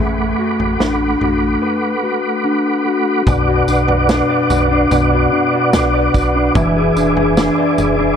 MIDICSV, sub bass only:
0, 0, Header, 1, 2, 480
1, 0, Start_track
1, 0, Tempo, 821918
1, 1908, Time_signature, 4, 2, 24, 8
1, 4768, End_track
2, 0, Start_track
2, 0, Title_t, "Sub bass"
2, 0, Program_c, 0, 38
2, 0, Note_on_c, 0, 33, 97
2, 199, Note_off_c, 0, 33, 0
2, 346, Note_on_c, 0, 33, 88
2, 452, Note_off_c, 0, 33, 0
2, 466, Note_on_c, 0, 33, 93
2, 678, Note_off_c, 0, 33, 0
2, 706, Note_on_c, 0, 33, 86
2, 918, Note_off_c, 0, 33, 0
2, 1908, Note_on_c, 0, 35, 105
2, 2119, Note_off_c, 0, 35, 0
2, 2147, Note_on_c, 0, 35, 91
2, 2464, Note_off_c, 0, 35, 0
2, 2625, Note_on_c, 0, 35, 96
2, 2837, Note_off_c, 0, 35, 0
2, 2866, Note_on_c, 0, 35, 109
2, 3078, Note_off_c, 0, 35, 0
2, 3105, Note_on_c, 0, 47, 99
2, 3343, Note_on_c, 0, 35, 107
2, 3352, Note_off_c, 0, 47, 0
2, 3556, Note_off_c, 0, 35, 0
2, 3587, Note_on_c, 0, 35, 101
2, 3799, Note_off_c, 0, 35, 0
2, 3827, Note_on_c, 0, 28, 112
2, 4039, Note_off_c, 0, 28, 0
2, 4064, Note_on_c, 0, 28, 90
2, 4382, Note_off_c, 0, 28, 0
2, 4543, Note_on_c, 0, 28, 101
2, 4757, Note_off_c, 0, 28, 0
2, 4768, End_track
0, 0, End_of_file